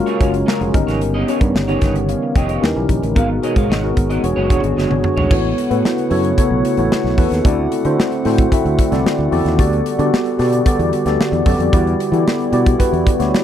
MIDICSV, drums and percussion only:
0, 0, Header, 1, 2, 480
1, 0, Start_track
1, 0, Tempo, 535714
1, 908, Time_signature, 4, 2, 24, 8
1, 12041, End_track
2, 0, Start_track
2, 0, Title_t, "Drums"
2, 62, Note_on_c, 9, 42, 32
2, 151, Note_off_c, 9, 42, 0
2, 184, Note_on_c, 9, 36, 84
2, 187, Note_on_c, 9, 42, 73
2, 274, Note_off_c, 9, 36, 0
2, 276, Note_off_c, 9, 42, 0
2, 303, Note_on_c, 9, 42, 51
2, 392, Note_off_c, 9, 42, 0
2, 433, Note_on_c, 9, 38, 103
2, 522, Note_off_c, 9, 38, 0
2, 546, Note_on_c, 9, 42, 35
2, 636, Note_off_c, 9, 42, 0
2, 665, Note_on_c, 9, 36, 96
2, 665, Note_on_c, 9, 42, 65
2, 755, Note_off_c, 9, 36, 0
2, 755, Note_off_c, 9, 42, 0
2, 792, Note_on_c, 9, 42, 46
2, 796, Note_on_c, 9, 38, 32
2, 881, Note_off_c, 9, 42, 0
2, 886, Note_off_c, 9, 38, 0
2, 908, Note_on_c, 9, 42, 81
2, 998, Note_off_c, 9, 42, 0
2, 1150, Note_on_c, 9, 42, 78
2, 1240, Note_off_c, 9, 42, 0
2, 1263, Note_on_c, 9, 36, 85
2, 1266, Note_on_c, 9, 42, 45
2, 1353, Note_off_c, 9, 36, 0
2, 1356, Note_off_c, 9, 42, 0
2, 1395, Note_on_c, 9, 38, 100
2, 1484, Note_off_c, 9, 38, 0
2, 1508, Note_on_c, 9, 42, 33
2, 1598, Note_off_c, 9, 42, 0
2, 1625, Note_on_c, 9, 42, 70
2, 1629, Note_on_c, 9, 36, 81
2, 1635, Note_on_c, 9, 38, 32
2, 1715, Note_off_c, 9, 42, 0
2, 1719, Note_off_c, 9, 36, 0
2, 1725, Note_off_c, 9, 38, 0
2, 1752, Note_on_c, 9, 42, 52
2, 1841, Note_off_c, 9, 42, 0
2, 1870, Note_on_c, 9, 42, 82
2, 1960, Note_off_c, 9, 42, 0
2, 2111, Note_on_c, 9, 36, 89
2, 2115, Note_on_c, 9, 42, 78
2, 2200, Note_off_c, 9, 36, 0
2, 2205, Note_off_c, 9, 42, 0
2, 2230, Note_on_c, 9, 42, 49
2, 2319, Note_off_c, 9, 42, 0
2, 2362, Note_on_c, 9, 38, 105
2, 2452, Note_off_c, 9, 38, 0
2, 2590, Note_on_c, 9, 36, 78
2, 2592, Note_on_c, 9, 42, 65
2, 2680, Note_off_c, 9, 36, 0
2, 2681, Note_off_c, 9, 42, 0
2, 2718, Note_on_c, 9, 42, 48
2, 2808, Note_off_c, 9, 42, 0
2, 2833, Note_on_c, 9, 36, 99
2, 2835, Note_on_c, 9, 42, 77
2, 2923, Note_off_c, 9, 36, 0
2, 2925, Note_off_c, 9, 42, 0
2, 3077, Note_on_c, 9, 42, 76
2, 3167, Note_off_c, 9, 42, 0
2, 3191, Note_on_c, 9, 36, 85
2, 3195, Note_on_c, 9, 42, 44
2, 3281, Note_off_c, 9, 36, 0
2, 3284, Note_off_c, 9, 42, 0
2, 3330, Note_on_c, 9, 38, 102
2, 3420, Note_off_c, 9, 38, 0
2, 3555, Note_on_c, 9, 42, 66
2, 3557, Note_on_c, 9, 36, 82
2, 3644, Note_off_c, 9, 42, 0
2, 3646, Note_off_c, 9, 36, 0
2, 3677, Note_on_c, 9, 42, 49
2, 3766, Note_off_c, 9, 42, 0
2, 3797, Note_on_c, 9, 42, 87
2, 3887, Note_off_c, 9, 42, 0
2, 4034, Note_on_c, 9, 36, 90
2, 4039, Note_on_c, 9, 42, 75
2, 4124, Note_off_c, 9, 36, 0
2, 4129, Note_off_c, 9, 42, 0
2, 4155, Note_on_c, 9, 42, 47
2, 4244, Note_off_c, 9, 42, 0
2, 4286, Note_on_c, 9, 38, 57
2, 4376, Note_off_c, 9, 38, 0
2, 4396, Note_on_c, 9, 48, 60
2, 4486, Note_off_c, 9, 48, 0
2, 4515, Note_on_c, 9, 45, 77
2, 4605, Note_off_c, 9, 45, 0
2, 4636, Note_on_c, 9, 43, 78
2, 4726, Note_off_c, 9, 43, 0
2, 4756, Note_on_c, 9, 36, 102
2, 4758, Note_on_c, 9, 49, 94
2, 4845, Note_off_c, 9, 36, 0
2, 4847, Note_off_c, 9, 49, 0
2, 5001, Note_on_c, 9, 42, 82
2, 5090, Note_off_c, 9, 42, 0
2, 5117, Note_on_c, 9, 42, 50
2, 5206, Note_off_c, 9, 42, 0
2, 5244, Note_on_c, 9, 38, 102
2, 5334, Note_off_c, 9, 38, 0
2, 5358, Note_on_c, 9, 42, 39
2, 5448, Note_off_c, 9, 42, 0
2, 5471, Note_on_c, 9, 46, 76
2, 5561, Note_off_c, 9, 46, 0
2, 5596, Note_on_c, 9, 42, 60
2, 5685, Note_off_c, 9, 42, 0
2, 5715, Note_on_c, 9, 36, 88
2, 5715, Note_on_c, 9, 42, 92
2, 5805, Note_off_c, 9, 36, 0
2, 5805, Note_off_c, 9, 42, 0
2, 5956, Note_on_c, 9, 42, 78
2, 6046, Note_off_c, 9, 42, 0
2, 6069, Note_on_c, 9, 42, 47
2, 6159, Note_off_c, 9, 42, 0
2, 6200, Note_on_c, 9, 38, 113
2, 6290, Note_off_c, 9, 38, 0
2, 6323, Note_on_c, 9, 38, 36
2, 6412, Note_off_c, 9, 38, 0
2, 6432, Note_on_c, 9, 36, 88
2, 6434, Note_on_c, 9, 46, 80
2, 6521, Note_off_c, 9, 36, 0
2, 6523, Note_off_c, 9, 46, 0
2, 6557, Note_on_c, 9, 42, 56
2, 6562, Note_on_c, 9, 38, 34
2, 6647, Note_off_c, 9, 42, 0
2, 6651, Note_off_c, 9, 38, 0
2, 6674, Note_on_c, 9, 36, 110
2, 6677, Note_on_c, 9, 42, 85
2, 6764, Note_off_c, 9, 36, 0
2, 6766, Note_off_c, 9, 42, 0
2, 6915, Note_on_c, 9, 42, 81
2, 7005, Note_off_c, 9, 42, 0
2, 7032, Note_on_c, 9, 42, 50
2, 7121, Note_off_c, 9, 42, 0
2, 7165, Note_on_c, 9, 38, 117
2, 7254, Note_off_c, 9, 38, 0
2, 7273, Note_on_c, 9, 42, 39
2, 7363, Note_off_c, 9, 42, 0
2, 7392, Note_on_c, 9, 46, 81
2, 7402, Note_on_c, 9, 38, 34
2, 7482, Note_off_c, 9, 46, 0
2, 7492, Note_off_c, 9, 38, 0
2, 7510, Note_on_c, 9, 42, 57
2, 7512, Note_on_c, 9, 36, 97
2, 7600, Note_off_c, 9, 42, 0
2, 7602, Note_off_c, 9, 36, 0
2, 7633, Note_on_c, 9, 36, 88
2, 7634, Note_on_c, 9, 42, 88
2, 7722, Note_off_c, 9, 36, 0
2, 7724, Note_off_c, 9, 42, 0
2, 7756, Note_on_c, 9, 42, 35
2, 7846, Note_off_c, 9, 42, 0
2, 7873, Note_on_c, 9, 36, 93
2, 7879, Note_on_c, 9, 42, 83
2, 7962, Note_off_c, 9, 36, 0
2, 7968, Note_off_c, 9, 42, 0
2, 7992, Note_on_c, 9, 42, 49
2, 8002, Note_on_c, 9, 38, 37
2, 8082, Note_off_c, 9, 42, 0
2, 8092, Note_off_c, 9, 38, 0
2, 8122, Note_on_c, 9, 38, 109
2, 8211, Note_off_c, 9, 38, 0
2, 8354, Note_on_c, 9, 46, 71
2, 8444, Note_off_c, 9, 46, 0
2, 8477, Note_on_c, 9, 42, 54
2, 8482, Note_on_c, 9, 38, 34
2, 8567, Note_off_c, 9, 42, 0
2, 8572, Note_off_c, 9, 38, 0
2, 8591, Note_on_c, 9, 36, 104
2, 8591, Note_on_c, 9, 42, 89
2, 8680, Note_off_c, 9, 42, 0
2, 8681, Note_off_c, 9, 36, 0
2, 8717, Note_on_c, 9, 42, 35
2, 8807, Note_off_c, 9, 42, 0
2, 8834, Note_on_c, 9, 42, 87
2, 8924, Note_off_c, 9, 42, 0
2, 8953, Note_on_c, 9, 42, 51
2, 9043, Note_off_c, 9, 42, 0
2, 9083, Note_on_c, 9, 38, 109
2, 9173, Note_off_c, 9, 38, 0
2, 9191, Note_on_c, 9, 42, 38
2, 9280, Note_off_c, 9, 42, 0
2, 9310, Note_on_c, 9, 46, 75
2, 9320, Note_on_c, 9, 38, 36
2, 9399, Note_off_c, 9, 46, 0
2, 9410, Note_off_c, 9, 38, 0
2, 9430, Note_on_c, 9, 42, 60
2, 9519, Note_off_c, 9, 42, 0
2, 9550, Note_on_c, 9, 36, 94
2, 9550, Note_on_c, 9, 42, 91
2, 9640, Note_off_c, 9, 36, 0
2, 9640, Note_off_c, 9, 42, 0
2, 9673, Note_on_c, 9, 42, 35
2, 9762, Note_off_c, 9, 42, 0
2, 9792, Note_on_c, 9, 42, 78
2, 9882, Note_off_c, 9, 42, 0
2, 9907, Note_on_c, 9, 42, 46
2, 9917, Note_on_c, 9, 38, 40
2, 9997, Note_off_c, 9, 42, 0
2, 10007, Note_off_c, 9, 38, 0
2, 10041, Note_on_c, 9, 38, 111
2, 10130, Note_off_c, 9, 38, 0
2, 10152, Note_on_c, 9, 42, 38
2, 10241, Note_off_c, 9, 42, 0
2, 10267, Note_on_c, 9, 36, 91
2, 10270, Note_on_c, 9, 46, 77
2, 10357, Note_off_c, 9, 36, 0
2, 10359, Note_off_c, 9, 46, 0
2, 10395, Note_on_c, 9, 42, 53
2, 10485, Note_off_c, 9, 42, 0
2, 10510, Note_on_c, 9, 36, 109
2, 10511, Note_on_c, 9, 42, 84
2, 10600, Note_off_c, 9, 36, 0
2, 10601, Note_off_c, 9, 42, 0
2, 10637, Note_on_c, 9, 42, 36
2, 10727, Note_off_c, 9, 42, 0
2, 10755, Note_on_c, 9, 42, 83
2, 10845, Note_off_c, 9, 42, 0
2, 10872, Note_on_c, 9, 42, 48
2, 10962, Note_off_c, 9, 42, 0
2, 10999, Note_on_c, 9, 38, 106
2, 11089, Note_off_c, 9, 38, 0
2, 11112, Note_on_c, 9, 42, 35
2, 11201, Note_off_c, 9, 42, 0
2, 11224, Note_on_c, 9, 42, 72
2, 11313, Note_off_c, 9, 42, 0
2, 11347, Note_on_c, 9, 36, 95
2, 11347, Note_on_c, 9, 42, 60
2, 11437, Note_off_c, 9, 36, 0
2, 11437, Note_off_c, 9, 42, 0
2, 11467, Note_on_c, 9, 36, 89
2, 11467, Note_on_c, 9, 42, 86
2, 11556, Note_off_c, 9, 36, 0
2, 11557, Note_off_c, 9, 42, 0
2, 11590, Note_on_c, 9, 42, 37
2, 11680, Note_off_c, 9, 42, 0
2, 11707, Note_on_c, 9, 36, 100
2, 11712, Note_on_c, 9, 42, 76
2, 11797, Note_off_c, 9, 36, 0
2, 11801, Note_off_c, 9, 42, 0
2, 11826, Note_on_c, 9, 42, 52
2, 11836, Note_on_c, 9, 38, 38
2, 11916, Note_off_c, 9, 42, 0
2, 11925, Note_off_c, 9, 38, 0
2, 11957, Note_on_c, 9, 38, 110
2, 12041, Note_off_c, 9, 38, 0
2, 12041, End_track
0, 0, End_of_file